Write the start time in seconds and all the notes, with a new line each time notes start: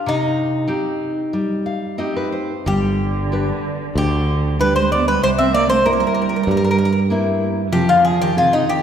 0.06 C3 D#4
0.68 C4 D#4 G4
1.33 G3
1.66 F5
1.98 C4 D#4 G4 D#5
2.16 B4
2.32 C5
2.66 G1 D3 G3 G4
3.32 D4 G4 B4
3.95 D2 D3 G4
4.58 G3 D4 G4 B4
4.76 G#3 C5
4.90 B3 D5
5.06 G3 B4
5.21 C2 C3 G3 C5
5.38 C4 E5
5.53 A#3 D5
5.69 A3 C5
5.85 G3 A#3 C4 E4 A#4
5.93 A#4
6.00 A#4
6.07 A#4
6.15 A#4
6.22 A#4
6.29 A#4
6.36 A#4
6.43 G2 A#4
6.48 G3 A#4
6.57 A#4
6.64 A#4
6.71 A#4
6.78 A#4
6.85 A#4
6.93 A#4
7.10 A#3 C4 E4
7.72 F2 C3 F3 G4
7.89 D3 F4
8.04 F3 G#4
8.21 D#3 G4
8.36 C3 C4 F4 G#4
8.53 C3 D#4
8.69 D#3 G4